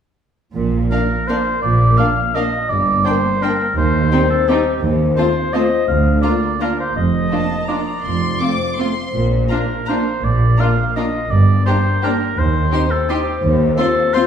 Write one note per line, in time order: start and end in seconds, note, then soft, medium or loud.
0.54 0.84 A#1 soft
0.54 0.84 A#2 soft
0.54 1.62 A#2 soft
0.73 1.79 A#3 soft
0.90 1.04 A#3 soft
0.90 1.00 A#3 soft
0.90 0.99 D4 soft
0.90 1.04 D4 soft
0.90 1.45 F4 soft
0.90 1.29 A#4 medium
0.90 0.99 F5 soft
1.09 2.16 D5 soft
1.28 1.37 A#3 soft
1.28 1.41 A#3 soft
1.28 1.37 D4 soft
1.28 1.42 D4 soft
1.28 1.61 C5 medium
1.28 1.37 F5 soft
1.46 1.97 F4 soft
1.62 1.92 A#1 soft
1.62 1.92 A#2 medium
1.62 2.72 A#2 soft
1.62 1.99 D5 medium
1.81 2.86 A#3 soft
1.97 2.11 A#3 soft
1.97 2.07 A#3 soft
1.97 2.11 D4 soft
1.97 2.07 D4 soft
1.97 2.51 F4 soft
1.97 2.05 F5 soft
1.97 2.36 F5 medium
2.17 3.22 D5 soft
2.35 2.43 A#3 soft
2.35 2.48 A#3 soft
2.35 2.43 D4 soft
2.35 2.49 D4 soft
2.35 3.41 A#4 soft
2.35 2.71 D#5 medium
2.35 2.43 F5 soft
2.53 2.71 F4 soft
2.69 3.00 G1 medium
2.69 3.78 G2 soft
2.69 3.00 G2 medium
2.69 3.07 D5 medium
2.87 3.78 A#3 soft
3.05 3.16 A#3 soft
3.05 3.21 A#3 soft
3.05 3.13 D4 soft
3.05 3.21 D4 soft
3.05 3.44 C5 medium
3.05 3.14 G5 soft
3.24 3.78 D5 soft
3.42 3.51 A#3 soft
3.42 3.56 A#3 soft
3.42 3.50 D4 soft
3.42 3.56 D4 soft
3.42 3.77 A#4 medium
3.42 3.51 G5 soft
3.61 4.84 G4 soft
3.77 4.05 D#2 medium
3.77 4.06 D#2 medium
3.77 4.82 D#3 soft
3.77 4.29 C5 medium
3.93 5.89 D#4 soft
4.11 4.25 G3 soft
4.11 4.19 C4 soft
4.11 4.24 D#4 soft
4.11 4.20 D#4 soft
4.11 4.66 C5 soft
4.11 4.20 G5 soft
4.30 4.50 A4 medium
4.30 4.84 G5 soft
4.48 4.61 G3 soft
4.48 4.57 C4 soft
4.48 4.61 D#4 soft
4.48 4.57 D#4 soft
4.48 4.82 G4 medium
4.48 5.89 D#5 medium
4.48 4.56 G5 soft
4.67 5.53 C5 soft
4.82 5.10 D#2 medium
4.82 5.11 D#2 medium
4.82 5.90 D#3 soft
5.01 5.90 C4 soft
5.16 5.31 A3 soft
5.16 5.25 C4 soft
5.16 5.26 F4 soft
5.16 5.31 F4 soft
5.16 5.71 A4 soft
5.16 5.55 C5 medium
5.16 5.25 A5 soft
5.36 6.41 F5 soft
5.53 5.67 A3 soft
5.53 5.62 C4 soft
5.53 5.61 F4 soft
5.53 5.66 F4 soft
5.53 5.89 C5 soft
5.53 5.87 D#5 medium
5.53 5.62 A5 soft
5.72 5.90 A4 soft
5.88 6.17 D2 soft
5.88 6.17 D2 medium
5.88 6.97 D3 soft
5.88 6.21 F5 medium
6.05 8.07 D4 soft
6.22 6.36 A#3 soft
6.22 6.31 D4 soft
6.22 6.36 F4 soft
6.22 6.31 F4 soft
6.22 6.77 A#4 soft
6.22 6.63 D5 medium
6.22 6.31 A#5 soft
6.42 7.69 F5 soft
6.59 6.72 A#3 soft
6.59 6.68 D4 soft
6.59 6.72 F4 soft
6.59 6.69 F4 soft
6.59 6.79 A#4 medium
6.59 7.31 D5 soft
6.59 6.68 A#5 soft
6.78 8.07 A#4 soft
6.78 6.95 C5 soft
6.96 7.25 F1 soft
6.96 7.26 F2 soft
6.96 8.06 F3 soft
6.96 7.70 D#5 medium
7.14 8.23 F4 soft
7.31 7.46 A#3 soft
7.31 7.40 D4 soft
7.31 7.46 D4 soft
7.31 7.40 F4 soft
7.31 7.88 D5 soft
7.31 7.67 A5 soft
7.67 7.84 A#3 soft
7.67 7.77 D4 soft
7.67 7.83 D4 soft
7.67 7.77 F4 soft
7.67 8.79 D5 soft
7.67 8.04 A#5 soft
7.89 8.07 D5 soft
8.04 8.35 F1 soft
8.04 8.35 F2 soft
8.04 11.33 F3 soft
8.04 8.40 C6 soft
8.24 11.33 F4 soft
8.40 8.56 A3 soft
8.40 8.48 C4 soft
8.40 8.56 C4 soft
8.40 8.50 F4 soft
8.40 8.97 C5 soft
8.40 8.78 D6 soft
8.62 9.17 A5 soft
8.78 8.92 A3 soft
8.78 8.87 C4 soft
8.78 8.92 C4 soft
8.78 8.86 F4 soft
8.78 9.69 F5 soft
8.78 9.14 C6 soft
8.99 9.17 C5 soft
9.14 9.44 A#1 medium
9.14 9.45 A#2 medium
9.14 10.23 A#2 soft
9.33 10.40 D4 soft
9.50 9.65 A#3 soft
9.50 9.64 D4 soft
9.50 9.59 D4 soft
9.50 9.60 F4 soft
9.50 9.90 A#4 medium
9.50 9.58 A#5 soft
9.87 9.97 D4 soft
9.87 9.97 F4 soft
9.87 10.26 C5 medium
9.87 10.96 D5 soft
9.87 9.95 A#5 soft
9.92 10.04 A#3 soft
9.92 10.04 D4 soft
10.07 10.59 A#4 soft
10.23 10.53 A#1 medium
10.23 10.53 A#2 soft
10.23 11.33 A#2 soft
10.23 10.62 D5 medium
10.42 11.48 D4 soft
10.58 10.73 A#3 soft
10.58 10.68 D4 soft
10.58 10.74 D4 soft
10.58 10.68 F4 soft
10.58 10.95 F5 medium
10.58 10.66 A#5 soft
10.96 11.09 A#3 soft
10.96 11.09 D4 soft
10.96 11.05 D4 soft
10.96 11.05 F4 soft
10.96 12.03 D5 soft
10.96 11.32 D#5 medium
10.96 11.04 A#5 soft
11.15 11.65 A#4 soft
11.31 11.60 G1 soft
11.31 11.60 G2 medium
11.31 12.40 G2 soft
11.31 11.65 D5 medium
11.49 12.40 D4 soft
11.66 11.81 A#3 soft
11.66 11.76 D4 soft
11.66 11.81 D4 soft
11.66 11.74 G4 soft
11.66 12.05 C5 medium
11.66 11.75 A#5 soft
11.86 12.91 G5 soft
12.02 12.17 A#3 soft
12.02 12.12 D4 soft
12.02 12.17 D4 soft
12.02 12.10 G4 soft
12.02 12.40 A#4 medium
12.02 12.40 D5 soft
12.02 12.12 A#5 soft
12.22 12.40 A#4 soft
12.38 12.67 D#2 medium
12.38 13.43 D#3 soft
12.38 12.93 C5 medium
12.72 12.86 C4 soft
12.72 12.81 D#4 soft
12.72 12.86 D#4 soft
12.72 12.80 G4 soft
12.72 13.27 C5 soft
12.72 12.81 C6 soft
12.91 13.11 A4 medium
12.91 13.45 G5 soft
13.09 13.22 C4 soft
13.09 13.21 D#4 soft
13.09 13.18 D#4 soft
13.09 13.44 G4 medium
13.09 13.18 G4 soft
13.09 13.18 C6 soft
13.28 13.78 C5 soft
13.43 13.73 D#2 medium
13.43 14.27 D#3 soft
13.61 14.27 C4 soft
13.77 13.86 C4 medium
13.77 13.92 C4 soft
13.77 13.92 F4 soft
13.77 13.87 F4 soft
13.77 14.15 A4 medium
13.77 14.15 C5 soft
13.77 13.87 C6 soft
13.98 14.27 F5 soft
14.14 14.23 C4 soft
14.14 14.27 C4 soft
14.14 14.23 F4 soft
14.14 14.27 F4 soft
14.14 14.27 C5 medium
14.14 14.27 C5 soft
14.14 14.22 C6 soft